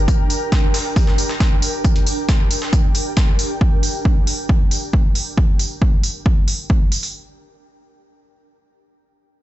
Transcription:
0.00 3.61 D4 medium
0.00 3.61 G4 medium
0.00 3.61 A#4 medium
0.00 3.61 G5 medium
0.08 kick loud
0.08 tambourine medium
0.30 open hi-hat loud
0.30 tambourine medium
0.52 kick loud
0.52 snare loud
0.52 tambourine medium
0.74 snare medium
0.74 open hi-hat loud
0.74 tambourine medium
0.96 kick loud
0.96 open hi-hat medium
1.07 snare soft
1.18 open hi-hat loud
1.18 tambourine medium
1.29 snare medium
1.40 kick loud
1.40 snare loud
1.40 tambourine medium
1.62 open hi-hat loud
1.62 tambourine medium
1.85 kick loud
1.85 tambourine medium
1.96 closed hi-hat soft
2.06 open hi-hat loud
2.06 tambourine medium
2.29 kick loud
2.29 snare loud
2.29 tambourine medium
2.51 open hi-hat loud
2.51 tambourine medium
2.62 snare medium
2.73 kick loud
2.73 tambourine medium
2.95 open hi-hat loud
2.95 tambourine medium
3.17 kick loud
3.17 snare loud
3.17 tambourine medium
3.39 open hi-hat loud
3.39 tambourine medium
3.61 kick loud
3.83 open hi-hat loud
4.05 kick loud
4.27 open hi-hat loud
4.49 kick loud
4.71 open hi-hat loud
4.93 kick loud
5.15 open hi-hat loud
5.38 kick loud
5.59 open hi-hat loud
5.82 kick loud
6.04 open hi-hat loud
6.26 kick loud
6.48 open hi-hat loud
6.70 kick loud
6.92 open hi-hat loud
7.03 open hi-hat medium

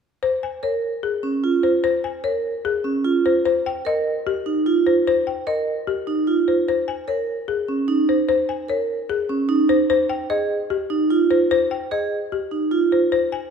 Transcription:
0.23 0.49 C5 medium
0.43 0.69 G#5 medium
0.63 0.89 A#4 medium
0.63 0.90 C#5 soft
1.03 1.30 G#4 medium
1.23 1.50 C#4 medium
1.44 1.70 F4 medium
1.63 1.83 C5 medium
1.84 2.10 C5 medium
2.04 2.31 G#5 medium
2.24 2.51 A#4 medium
2.24 2.51 C#5 medium
2.65 2.91 G#4 medium
2.84 3.11 C#4 medium
3.05 3.31 F4 medium
3.26 3.44 C5 medium
3.45 3.72 C5 medium
3.66 3.92 G5 medium
3.85 4.12 A#4 medium
3.85 4.12 D#5 medium
4.27 4.52 G4 medium
4.46 4.72 D#4 medium
4.66 4.92 F4 medium
4.87 5.06 C5 medium
5.07 5.33 C5 medium
5.27 5.53 G5 medium
5.47 5.73 A#4 soft
5.47 5.73 D#5 medium
5.87 6.13 G4 medium
6.07 6.33 D#4 medium
6.27 6.53 F4 medium
6.48 6.67 C5 medium
6.68 6.94 C5 medium
6.88 7.14 G#5 medium
7.08 7.34 A#4 soft
7.08 7.34 C#5 medium
7.48 7.74 G#4 medium
7.68 7.94 C#4 medium
7.88 8.14 D#4 medium
8.09 8.27 C5 medium
8.29 8.55 C5 medium
8.49 8.75 G#5 medium
8.68 8.95 A#4 medium
8.68 8.95 C#5 medium
9.10 9.35 G#4 medium
9.29 9.55 C#4 medium
9.49 9.75 D#4 medium
9.69 9.89 C5 medium
9.90 10.16 C5 medium
10.10 10.36 G5 medium
10.30 10.56 G#4 medium
10.30 10.56 D#5 medium
10.70 10.96 G4 medium
10.90 11.16 D#4 medium
11.11 11.37 F4 medium
11.31 11.50 C5 medium
11.51 11.77 C5 medium
11.71 11.97 G5 medium
11.91 12.17 G#4 soft
11.91 12.17 D#5 medium
12.32 12.58 G4 medium
12.51 12.78 D#4 medium
12.71 12.98 F4 medium
12.92 13.11 C5 medium
13.12 13.38 C5 medium
13.32 13.50 G#5 medium

